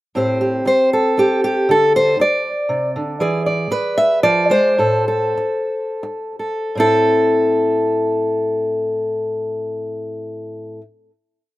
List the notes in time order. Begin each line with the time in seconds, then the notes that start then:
0.15 A2 C4 G4 C5
0.41 G4
0.65 C5, muted steel-string acoustic guitar stroke
0.93 A4
1.17 G4, muted steel-string acoustic guitar stroke
1.44 G4
1.69 D3 A4
1.96 C5
2.20 D5, muted steel-string acoustic guitar stroke
2.69 C3
2.96 D3
3.20 E3 G#4 D5
3.46 D5
3.71 B4, muted steel-string acoustic guitar stroke
3.98 E5
4.23 F3 D5
4.50 G#3 C5
4.78 A2 A4
5.08 A4
5.37 muted steel-string acoustic guitar stroke
6.03 muted steel-string acoustic guitar stroke
6.39 A4
6.75 A2 C4
6.80 E4 A4